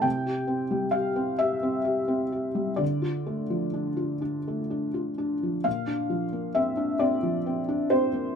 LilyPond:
\new Staff \with { instrumentName = "Felt piano" } { \time 6/8 \key d \minor \tempo 4. = 43 << { g''4 f''8 e''4. | d''4. r4. | f''4 e''8 d''4 c''8 | } \\ { c16 g'16 c'16 g16 g'16 c'16 g'16 c'16 g'16 c'16 g'16 g16 | d16 f'16 a16 f16 d'16 f'16 d'16 a16 d'16 f'16 d'16 f16 | bes,16 d'16 f16 bes16 c'16 d'16 c'16 f16 c'16 d'16 c'16 bes16 | } >> }